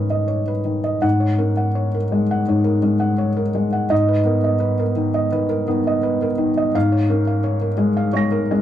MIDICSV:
0, 0, Header, 1, 2, 480
1, 0, Start_track
1, 0, Tempo, 716846
1, 695, Time_signature, 4, 2, 24, 8
1, 3575, Tempo, 702576
1, 5815, End_track
2, 0, Start_track
2, 0, Title_t, "Felt piano"
2, 0, Program_c, 0, 0
2, 0, Control_c, 0, 64, 127
2, 0, Note_on_c, 0, 44, 41
2, 0, Note_on_c, 0, 51, 43
2, 0, Note_on_c, 0, 61, 44
2, 0, Note_on_c, 0, 71, 46
2, 0, Note_on_c, 0, 73, 39
2, 0, Note_on_c, 0, 75, 46
2, 68, Note_off_c, 0, 75, 0
2, 68, Note_on_c, 0, 75, 45
2, 150, Note_off_c, 0, 51, 0
2, 185, Note_off_c, 0, 73, 0
2, 185, Note_on_c, 0, 73, 43
2, 272, Note_off_c, 0, 75, 0
2, 319, Note_off_c, 0, 71, 0
2, 319, Note_on_c, 0, 71, 43
2, 341, Note_off_c, 0, 61, 0
2, 391, Note_off_c, 0, 73, 0
2, 432, Note_on_c, 0, 51, 41
2, 519, Note_off_c, 0, 71, 0
2, 562, Note_on_c, 0, 75, 44
2, 636, Note_off_c, 0, 51, 0
2, 657, Note_off_c, 0, 44, 0
2, 681, Note_on_c, 0, 44, 57
2, 682, Note_on_c, 0, 78, 72
2, 688, Note_off_c, 0, 75, 0
2, 706, Control_c, 0, 64, 0
2, 804, Note_on_c, 0, 73, 45
2, 832, Control_c, 0, 64, 127
2, 880, Note_off_c, 0, 78, 0
2, 927, Note_on_c, 0, 70, 49
2, 929, Note_on_c, 0, 61, 41
2, 1001, Note_off_c, 0, 73, 0
2, 1051, Note_on_c, 0, 78, 40
2, 1123, Note_off_c, 0, 70, 0
2, 1173, Note_on_c, 0, 73, 44
2, 1246, Note_off_c, 0, 78, 0
2, 1302, Note_on_c, 0, 70, 42
2, 1317, Note_off_c, 0, 61, 0
2, 1368, Note_off_c, 0, 73, 0
2, 1419, Note_on_c, 0, 56, 52
2, 1492, Note_off_c, 0, 70, 0
2, 1547, Note_on_c, 0, 78, 49
2, 1611, Note_off_c, 0, 56, 0
2, 1624, Note_off_c, 0, 44, 0
2, 1662, Note_on_c, 0, 44, 46
2, 1664, Note_on_c, 0, 73, 47
2, 1734, Note_off_c, 0, 78, 0
2, 1769, Note_on_c, 0, 70, 49
2, 1853, Note_off_c, 0, 73, 0
2, 1890, Note_on_c, 0, 56, 46
2, 1894, Note_on_c, 0, 61, 47
2, 1966, Note_off_c, 0, 70, 0
2, 2007, Note_on_c, 0, 78, 50
2, 2087, Note_off_c, 0, 56, 0
2, 2131, Note_on_c, 0, 73, 50
2, 2206, Note_off_c, 0, 78, 0
2, 2254, Note_on_c, 0, 70, 48
2, 2282, Note_off_c, 0, 61, 0
2, 2328, Note_off_c, 0, 73, 0
2, 2376, Note_on_c, 0, 56, 47
2, 2449, Note_off_c, 0, 70, 0
2, 2495, Note_on_c, 0, 78, 46
2, 2569, Note_off_c, 0, 56, 0
2, 2594, Note_off_c, 0, 44, 0
2, 2611, Note_on_c, 0, 44, 60
2, 2611, Note_on_c, 0, 75, 74
2, 2616, Note_off_c, 0, 78, 0
2, 2631, Control_c, 0, 64, 0
2, 2735, Note_on_c, 0, 71, 51
2, 2756, Control_c, 0, 64, 127
2, 2805, Note_off_c, 0, 75, 0
2, 2843, Note_on_c, 0, 59, 51
2, 2846, Note_on_c, 0, 70, 50
2, 2926, Note_off_c, 0, 71, 0
2, 2973, Note_on_c, 0, 75, 47
2, 3042, Note_off_c, 0, 70, 0
2, 3079, Note_on_c, 0, 71, 53
2, 3165, Note_off_c, 0, 75, 0
2, 3210, Note_on_c, 0, 70, 46
2, 3232, Note_off_c, 0, 59, 0
2, 3278, Note_off_c, 0, 71, 0
2, 3321, Note_on_c, 0, 51, 56
2, 3404, Note_off_c, 0, 70, 0
2, 3443, Note_on_c, 0, 75, 56
2, 3519, Note_off_c, 0, 51, 0
2, 3543, Note_off_c, 0, 44, 0
2, 3564, Note_on_c, 0, 51, 45
2, 3564, Note_on_c, 0, 71, 49
2, 3641, Note_off_c, 0, 75, 0
2, 3680, Note_on_c, 0, 70, 55
2, 3763, Note_off_c, 0, 71, 0
2, 3795, Note_off_c, 0, 51, 0
2, 3805, Note_on_c, 0, 59, 54
2, 3806, Note_on_c, 0, 51, 57
2, 3881, Note_off_c, 0, 70, 0
2, 3938, Note_on_c, 0, 75, 56
2, 4004, Note_off_c, 0, 51, 0
2, 4047, Note_on_c, 0, 71, 56
2, 4131, Note_off_c, 0, 75, 0
2, 4177, Note_on_c, 0, 70, 52
2, 4197, Note_off_c, 0, 59, 0
2, 4245, Note_off_c, 0, 71, 0
2, 4285, Note_on_c, 0, 51, 57
2, 4371, Note_off_c, 0, 70, 0
2, 4418, Note_on_c, 0, 75, 53
2, 4484, Note_off_c, 0, 51, 0
2, 4537, Note_on_c, 0, 44, 66
2, 4539, Note_off_c, 0, 75, 0
2, 4541, Note_on_c, 0, 77, 84
2, 4551, Control_c, 0, 64, 0
2, 4656, Note_on_c, 0, 73, 49
2, 4675, Control_c, 0, 64, 127
2, 4731, Note_off_c, 0, 77, 0
2, 4776, Note_on_c, 0, 61, 53
2, 4777, Note_on_c, 0, 70, 59
2, 4848, Note_off_c, 0, 73, 0
2, 4896, Note_on_c, 0, 77, 52
2, 4968, Note_off_c, 0, 70, 0
2, 5009, Note_on_c, 0, 73, 59
2, 5087, Note_off_c, 0, 77, 0
2, 5128, Note_on_c, 0, 70, 47
2, 5157, Note_off_c, 0, 61, 0
2, 5203, Note_off_c, 0, 73, 0
2, 5240, Note_on_c, 0, 56, 61
2, 5322, Note_off_c, 0, 70, 0
2, 5370, Note_on_c, 0, 77, 61
2, 5438, Note_off_c, 0, 56, 0
2, 5465, Note_off_c, 0, 44, 0
2, 5483, Note_on_c, 0, 73, 57
2, 5483, Note_on_c, 0, 85, 44
2, 5486, Note_on_c, 0, 56, 52
2, 5507, Note_on_c, 0, 94, 38
2, 5564, Note_off_c, 0, 77, 0
2, 5609, Note_on_c, 0, 70, 62
2, 5680, Note_off_c, 0, 73, 0
2, 5731, Note_off_c, 0, 56, 0
2, 5741, Note_on_c, 0, 56, 62
2, 5744, Note_on_c, 0, 61, 52
2, 5803, Note_off_c, 0, 70, 0
2, 5815, Note_off_c, 0, 56, 0
2, 5815, Note_off_c, 0, 61, 0
2, 5815, Note_off_c, 0, 85, 0
2, 5815, Note_off_c, 0, 94, 0
2, 5815, End_track
0, 0, End_of_file